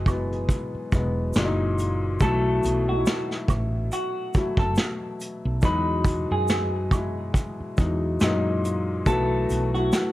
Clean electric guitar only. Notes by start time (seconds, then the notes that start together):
2.22 A4
2.89 F#4
3.93 F#4
4.59 A4
5.65 B4
6.32 G#4
9.07 A4
9.74 F#4